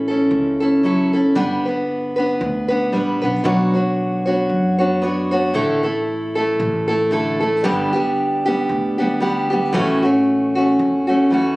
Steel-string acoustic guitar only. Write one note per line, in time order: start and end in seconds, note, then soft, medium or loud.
0.08 0.62 C#4 soft
0.08 0.61 E4 soft
0.08 0.59 A4 soft
0.60 0.83 C#4 soft
0.60 0.84 E4 soft
0.60 0.83 A4 medium
0.83 1.13 F#3 soft
0.83 1.14 C#4 medium
0.83 1.13 E4 medium
0.83 1.12 A4 medium
1.13 1.35 C#4 soft
1.13 1.36 E4 soft
1.13 1.36 A4 soft
1.35 1.65 G3 medium
1.35 1.66 B3 medium
1.35 1.65 D4 medium
1.35 1.64 B4 medium
1.65 2.18 B3 soft
1.65 2.19 D4 soft
1.65 2.16 B4 soft
2.16 2.69 B3 soft
2.16 2.71 D4 soft
2.16 2.67 B4 soft
2.68 2.93 B3 soft
2.68 2.93 D4 soft
2.68 2.92 B4 soft
2.92 3.22 G3 soft
2.92 3.22 B3 medium
2.92 3.23 D4 soft
2.92 3.20 B4 soft
3.22 3.44 B3 soft
3.22 3.44 D4 soft
3.22 3.45 B4 soft
3.44 3.74 B2 medium
3.44 3.75 F#3 medium
3.44 3.75 B3 medium
3.44 3.75 D4 medium
3.44 3.74 F#4 medium
3.44 3.72 C#5 medium
3.74 4.28 B3 soft
3.74 4.27 D4 soft
3.74 4.26 F#4 soft
3.74 4.24 C#5 soft
4.26 4.80 B3 soft
4.26 4.80 D4 soft
4.26 4.79 F#4 soft
4.26 4.77 C#5 soft
4.79 5.01 B3 soft
4.79 5.02 D4 soft
4.79 5.03 F#4 soft
4.79 5.02 C#5 soft
5.02 5.32 B3 medium
5.02 5.32 D4 medium
5.02 5.31 F#4 medium
5.02 5.30 C#5 medium
5.31 5.54 B3 soft
5.31 5.54 D4 soft
5.31 5.55 F#4 soft
5.31 5.55 C#5 medium
5.54 5.84 A2 medium
5.54 5.84 D3 medium
5.54 5.85 A3 medium
5.54 5.83 E4 medium
5.54 5.82 A4 medium
5.83 6.37 A3 soft
5.83 6.36 E4 soft
5.83 6.34 A4 soft
6.35 6.89 A3 soft
6.35 6.88 E4 soft
6.35 6.87 A4 medium
6.88 7.11 A3 soft
6.88 7.12 E4 soft
6.88 7.12 A4 soft
7.11 7.41 D3 medium
7.11 7.42 A3 medium
7.11 7.41 E4 medium
7.11 7.39 A4 medium
7.40 7.64 A3 soft
7.40 7.64 E4 soft
7.40 7.64 A4 soft
7.64 7.94 G2 medium
7.64 7.94 D3 medium
7.64 7.94 G3 medium
7.64 7.94 B3 medium
7.64 7.93 D4 medium
7.64 7.92 G4 medium
7.93 8.47 G3 soft
7.93 8.46 B3 soft
7.93 8.45 D4 soft
7.93 8.44 G4 medium
8.46 9.00 G3 soft
8.46 8.99 B3 soft
8.46 8.98 D4 medium
8.46 8.97 G4 medium
8.98 9.19 G3 soft
8.98 9.20 B3 soft
8.98 9.21 D4 soft
8.98 9.21 G4 soft
9.20 9.51 G3 medium
9.20 9.51 B3 medium
9.20 9.50 D4 medium
9.20 9.49 G4 medium
9.50 9.73 G3 soft
9.50 9.74 B3 soft
9.50 9.74 D4 soft
9.50 9.74 G4 medium
9.73 10.03 A2 medium
9.73 10.03 E3 medium
9.73 10.04 A3 medium
9.73 10.03 C#4 medium
9.73 10.01 F#4 medium
10.02 10.57 A3 soft
10.02 10.56 C#4 soft
10.02 10.54 F#4 soft
10.55 11.09 A3 soft
10.55 11.08 C#4 soft
10.55 11.06 F#4 medium
11.07 11.31 A3 soft
11.07 11.31 C#4 medium
11.07 11.31 F#4 soft
11.31 11.56 E3 medium
11.31 11.56 A3 medium
11.31 11.56 C#4 medium
11.31 11.56 F#4 medium